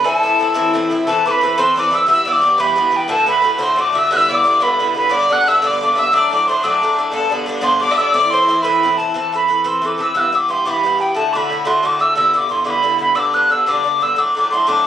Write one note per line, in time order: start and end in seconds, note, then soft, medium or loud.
0.04 0.22 A2 medium
0.04 0.23 E3 medium
0.04 0.24 C4 medium
0.04 0.24 E4 medium
0.04 0.74 A4 medium
0.04 0.16 G#5 medium
0.16 0.74 A5 medium
0.23 0.38 A2 medium
0.23 0.39 E3 medium
0.23 0.40 C4 medium
0.23 0.40 E4 medium
0.40 0.53 A2 medium
0.40 0.54 E3 medium
0.40 0.54 C4 medium
0.40 0.55 E4 medium
0.54 0.72 A2 medium
0.54 0.73 E3 loud
0.54 0.74 C4 medium
0.54 0.75 E4 medium
0.73 0.88 A2 medium
0.73 0.90 E3 medium
0.73 0.91 C4 medium
0.73 0.91 E4 medium
0.90 1.06 A2 medium
0.90 1.06 E3 medium
0.90 1.07 C4 medium
0.90 1.07 E4 medium
1.06 1.24 E3 medium
1.06 1.26 C4 medium
1.06 1.23 A4 medium
1.06 1.26 A4 medium
1.06 1.26 B4 medium
1.06 1.28 A5 loud
1.25 1.40 E3 medium
1.25 1.42 C4 medium
1.25 1.42 A4 medium
1.25 1.35 B4 medium
1.25 1.42 B4 medium
1.25 1.32 D6 medium
1.31 1.57 B5 medium
1.36 1.46 B4 medium
1.41 1.56 E3 medium
1.41 1.57 C4 medium
1.41 1.58 A4 medium
1.41 1.58 B4 medium
1.48 1.60 B4 medium
1.58 1.75 E3 medium
1.58 1.76 C4 medium
1.58 1.77 A4 medium
1.58 1.77 B4 medium
1.58 1.75 C5 medium
1.58 1.75 C6 medium
1.76 1.90 E3 medium
1.76 1.91 C4 medium
1.76 1.92 A4 medium
1.76 1.93 B4 medium
1.76 1.95 D5 medium
1.76 1.96 D6 medium
1.91 2.06 E3 medium
1.91 2.08 C4 medium
1.91 2.08 A4 medium
1.91 2.08 B4 medium
1.91 2.07 E5 medium
1.91 2.09 E6 medium
2.06 2.24 G2 medium
2.06 2.25 E3 medium
2.06 2.26 B3 medium
2.06 2.26 G4 medium
2.06 2.25 E5 medium
2.11 2.28 E6 loud
2.25 2.40 G2 medium
2.25 2.41 E3 medium
2.25 2.41 B3 medium
2.25 2.42 G4 medium
2.25 2.59 D5 medium
2.25 2.33 E6 loud
2.33 2.62 D6 loud
2.41 2.57 G2 medium
2.41 2.58 E3 medium
2.41 2.58 B3 medium
2.41 2.59 G4 medium
2.57 2.74 G2 medium
2.57 2.75 E3 medium
2.57 2.76 B3 medium
2.57 2.77 G4 medium
2.57 3.12 B4 medium
2.57 2.98 B5 medium
2.76 2.89 G2 medium
2.76 2.91 E3 medium
2.76 2.92 B3 medium
2.76 2.93 G4 medium
2.91 3.07 G2 medium
2.91 3.08 E3 medium
2.91 3.09 B3 medium
2.91 3.09 G4 medium
2.97 3.10 G5 medium
3.08 3.25 A2 medium
3.08 3.26 D3 medium
3.08 3.27 A3 medium
3.08 3.28 F#4 medium
3.08 3.26 A4 medium
3.08 3.27 A5 medium
3.26 3.41 A2 medium
3.26 3.42 D3 medium
3.26 3.42 A3 medium
3.26 3.43 F#4 medium
3.26 3.57 B4 medium
3.26 3.58 B5 loud
3.42 3.57 A2 medium
3.42 3.58 D3 medium
3.42 3.58 A3 medium
3.42 3.59 F#4 medium
3.58 3.75 A2 medium
3.58 3.76 D3 medium
3.58 3.77 A3 medium
3.58 3.77 F#4 medium
3.58 3.76 C5 medium
3.63 3.82 C6 medium
3.76 3.91 A2 medium
3.76 3.92 D3 medium
3.76 3.94 A3 medium
3.76 3.94 F#4 medium
3.76 3.96 D5 medium
3.81 4.00 D6 medium
3.93 4.09 A2 medium
3.93 4.10 D3 medium
3.93 4.10 A3 medium
3.93 4.10 F#4 medium
3.93 4.09 E5 medium
3.98 4.11 E6 medium
4.09 4.27 G2 medium
4.09 4.28 D3 medium
4.09 4.29 B3 medium
4.09 4.30 E4 medium
4.09 4.31 E5 medium
4.09 4.18 F#6 loud
4.17 4.31 E6 loud
4.28 4.43 G2 medium
4.28 4.44 D3 medium
4.28 4.45 B3 medium
4.28 4.46 E4 medium
4.28 4.63 D5 medium
4.28 4.36 E6 medium
4.35 4.64 D6 loud
4.44 4.59 G2 medium
4.44 4.60 D3 medium
4.44 4.61 B3 medium
4.44 4.61 E4 medium
4.60 4.78 G2 medium
4.60 4.79 D3 medium
4.60 4.79 B3 medium
4.60 4.80 E4 medium
4.60 4.95 B4 medium
4.60 4.96 B5 medium
4.79 4.93 G2 medium
4.79 4.95 D3 medium
4.79 4.96 B3 medium
4.79 4.96 E4 medium
4.95 5.08 G2 medium
4.95 5.09 D3 medium
4.95 5.10 B3 medium
4.95 5.11 E4 medium
4.95 5.12 B4 medium
4.95 5.16 B5 medium
5.09 5.28 G2 medium
5.09 5.29 D3 medium
5.09 5.30 B3 medium
5.09 5.30 D4 medium
5.09 5.33 D5 medium
5.14 5.34 D6 loud
5.29 5.44 G2 medium
5.29 5.46 D3 medium
5.29 5.46 B3 medium
5.29 5.47 D4 medium
5.29 5.50 F#5 medium
5.29 5.49 F#6 loud
5.46 5.61 G2 medium
5.46 5.61 D3 medium
5.46 5.62 B3 medium
5.46 5.63 D4 medium
5.46 5.62 E5 medium
5.46 5.63 E6 medium
5.62 5.80 G2 medium
5.62 5.80 D3 medium
5.62 5.81 B3 medium
5.62 5.81 D4 medium
5.62 5.94 D5 medium
5.62 5.68 E6 medium
5.67 6.01 D6 medium
5.81 5.94 G2 medium
5.81 5.95 D3 medium
5.81 5.96 B3 medium
5.81 5.97 D4 medium
5.95 6.11 G2 medium
5.95 6.12 D3 medium
5.95 6.13 B3 medium
5.95 6.12 D4 medium
5.95 6.10 E5 medium
5.99 6.16 E6 medium
6.12 6.30 A2 medium
6.12 6.31 F#3 medium
6.12 6.31 A3 medium
6.12 6.31 D4 medium
6.12 6.31 D5 loud
6.12 6.32 D6 loud
6.31 6.47 A2 medium
6.31 6.47 F#3 medium
6.31 6.48 A3 medium
6.31 6.48 D4 medium
6.31 6.46 D5 medium
6.31 6.49 D6 medium
6.48 6.62 A2 medium
6.48 6.63 F#3 medium
6.48 6.63 A3 medium
6.48 6.64 D4 medium
6.48 6.62 C5 medium
6.48 6.65 C6 medium
6.63 6.81 A2 medium
6.63 6.82 F#3 medium
6.63 6.82 A3 medium
6.63 6.82 D4 medium
6.63 6.98 D5 medium
6.63 6.69 E6 medium
6.68 7.01 D6 medium
6.82 6.95 A2 medium
6.82 6.97 F#3 medium
6.82 6.98 A3 medium
6.82 6.99 D4 medium
6.96 7.11 A2 soft
6.96 7.12 F#3 medium
6.96 7.13 A3 medium
6.96 7.12 D4 medium
7.12 7.28 G2 medium
7.12 7.30 D3 medium
7.12 7.31 B3 medium
7.12 7.31 D4 medium
7.12 7.30 A4 medium
7.12 7.31 A5 medium
7.30 7.45 G2 medium
7.30 7.46 D3 medium
7.30 7.47 B3 medium
7.30 7.48 D4 medium
7.46 7.60 G2 medium
7.46 7.61 D3 medium
7.46 7.61 B3 medium
7.46 7.62 D4 medium
7.61 7.79 G2 medium
7.61 7.81 D3 medium
7.61 7.81 B3 medium
7.61 7.82 D4 medium
7.61 7.81 C5 medium
7.61 7.83 C6 medium
7.80 7.95 G2 medium
7.80 7.97 D3 medium
7.80 7.98 B3 medium
7.80 7.98 D4 medium
7.80 7.93 D5 loud
7.80 7.99 D6 medium
7.91 8.03 E5 medium
7.97 8.13 G2 soft
7.97 8.13 D3 medium
7.97 8.14 B3 medium
7.97 8.14 D4 medium
7.97 8.14 E6 medium
8.01 8.13 D5 loud
8.12 8.31 A2 medium
8.12 8.31 E3 medium
8.12 8.32 C4 medium
8.12 8.33 E4 medium
8.12 8.35 D5 loud
8.12 8.32 D6 loud
8.30 8.47 A2 medium
8.30 8.48 E3 medium
8.30 8.49 C4 medium
8.30 8.49 E4 medium
8.30 8.65 C5 medium
8.30 8.64 C6 loud
8.48 8.62 A2 medium
8.48 8.63 E3 medium
8.48 8.63 C4 medium
8.48 8.64 E4 medium
8.62 8.82 A2 medium
8.62 8.83 E3 medium
8.62 8.83 C4 medium
8.62 8.83 E4 medium
8.62 9.14 B4 medium
8.62 8.99 B5 medium
8.83 8.96 A2 medium
8.83 8.97 E3 medium
8.83 8.98 C4 medium
8.83 8.99 E4 medium
8.97 9.14 A2 soft
8.97 9.13 E3 medium
8.97 9.14 C4 medium
8.97 9.15 E4 medium
8.97 9.14 A5 medium
9.14 9.31 E3 medium
9.14 9.32 C4 medium
9.14 9.33 A4 medium
9.14 9.34 B4 medium
9.14 9.33 A5 medium
9.32 9.47 E3 soft
9.32 9.48 C4 medium
9.32 9.49 A4 medium
9.32 9.49 B4 medium
9.32 9.69 B5 medium
9.48 9.63 E3 soft
9.48 9.63 C4 soft
9.48 9.63 A4 medium
9.48 9.64 B4 medium
9.64 9.80 E3 medium
9.64 9.82 C4 medium
9.64 9.83 A4 medium
9.64 9.84 B4 medium
9.64 9.88 C6 medium
9.82 9.97 E3 medium
9.82 9.98 C4 medium
9.82 9.99 A4 medium
9.82 9.99 B4 medium
9.86 10.04 D6 medium
9.98 10.14 E3 soft
9.98 10.14 C4 soft
9.98 10.15 A4 medium
9.98 10.16 B4 medium
10.02 10.16 E6 medium
10.14 10.31 G2 medium
10.14 10.31 E3 medium
10.14 10.33 B3 medium
10.14 10.34 G4 medium
10.14 10.21 F#6 medium
10.20 10.37 E6 medium
10.32 10.47 G2 medium
10.32 10.48 E3 medium
10.32 10.49 B3 medium
10.32 10.50 G4 medium
10.32 10.52 D6 medium
10.49 10.64 G2 medium
10.49 10.65 E3 medium
10.49 10.66 B3 medium
10.49 10.66 G4 medium
10.49 10.68 C6 medium
10.65 10.82 G2 medium
10.65 10.84 E3 medium
10.65 10.84 B3 medium
10.65 10.85 G4 medium
10.65 10.71 D6 medium
10.70 11.02 B5 medium
10.83 10.97 G2 medium
10.83 10.98 E3 medium
10.83 11.00 B3 medium
10.83 11.00 G4 medium
10.98 11.14 G2 soft
10.98 11.15 E3 soft
10.98 11.16 B3 medium
10.98 11.16 G4 medium
10.98 11.15 G5 medium
11.15 11.32 A2 medium
11.15 11.34 D3 medium
11.15 11.35 A3 medium
11.15 11.35 F#4 medium
11.15 11.35 A5 medium
11.33 11.48 A2 medium
11.33 11.49 D3 medium
11.33 11.51 A3 medium
11.33 11.51 F#4 medium
11.33 11.68 B5 medium
11.33 11.38 D6 medium
11.50 11.64 A2 medium
11.50 11.64 D3 medium
11.50 11.65 A3 medium
11.50 11.66 F#4 medium
11.65 11.82 A2 medium
11.65 11.82 D3 medium
11.65 11.84 A3 medium
11.65 11.84 F#4 medium
11.65 11.88 C6 medium
11.83 11.98 A2 medium
11.83 11.99 D3 medium
11.83 12.00 A3 medium
11.83 12.01 F#4 medium
11.83 12.03 D6 medium
11.99 12.15 A2 soft
11.99 12.15 D3 medium
11.99 12.17 A3 medium
11.99 12.17 F#4 soft
11.99 12.17 E6 medium
12.15 12.32 G2 medium
12.15 12.33 D3 medium
12.15 12.34 B3 medium
12.15 12.35 E4 medium
12.15 12.34 E6 medium
12.33 12.48 G2 medium
12.33 12.48 D3 medium
12.33 12.49 B3 medium
12.33 12.50 E4 medium
12.33 12.53 D6 medium
12.49 12.63 G2 medium
12.49 12.64 D3 medium
12.49 12.65 B3 medium
12.49 12.65 E4 medium
12.49 12.67 C6 medium
12.64 12.81 G2 medium
12.64 12.83 D3 medium
12.64 12.83 B3 medium
12.64 12.84 E4 medium
12.64 12.71 D6 medium
12.70 12.99 B5 medium
12.83 12.97 G2 medium
12.83 12.98 D3 medium
12.83 12.99 B3 medium
12.83 13.00 E4 medium
12.98 13.14 G2 soft
12.98 13.14 D3 medium
12.98 13.15 B3 medium
12.98 13.16 E4 medium
12.98 13.17 B5 medium
13.15 13.32 G2 medium
13.15 13.33 D3 medium
13.15 13.34 B3 medium
13.15 13.35 D4 medium
13.15 13.21 E6 medium
13.20 13.36 D6 medium
13.33 13.48 G2 medium
13.33 13.49 D3 medium
13.33 13.50 B3 medium
13.33 13.51 D4 medium
13.33 13.53 F#6 medium
13.49 13.65 G2 medium
13.49 13.66 D3 medium
13.49 13.67 B3 medium
13.49 13.67 D4 medium
13.49 13.67 E6 medium
13.66 13.83 G2 medium
13.66 13.84 D3 medium
13.66 13.85 B3 medium
13.66 13.86 D4 medium
13.66 14.04 D6 medium
13.84 13.99 G2 medium
13.84 14.00 D3 medium
13.84 14.01 B3 medium
13.84 14.01 D4 medium
14.00 14.16 G2 soft
14.00 14.16 D3 medium
14.00 14.17 B3 medium
14.00 14.17 D4 medium
14.00 14.20 E6 medium
14.16 14.34 A2 medium
14.16 14.35 F#3 medium
14.16 14.36 A3 medium
14.16 14.37 D4 medium
14.16 14.37 D6 medium
14.35 14.49 A2 medium
14.35 14.51 F#3 medium
14.35 14.52 A3 medium
14.35 14.53 D4 medium
14.35 14.51 D6 medium
14.51 14.66 A2 soft
14.51 14.67 F#3 medium
14.51 14.67 A3 medium
14.51 14.68 D4 medium
14.51 14.70 C6 medium
14.67 14.84 A2 medium
14.67 14.85 F#3 medium
14.67 14.86 A3 medium
14.67 14.87 D4 medium
14.67 14.87 D6 medium